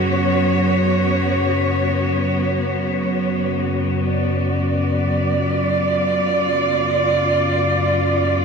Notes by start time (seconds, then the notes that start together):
Already playing: F#2 C#3 F#3 B3 F#4 C#5
4.07 D5
5.33 F4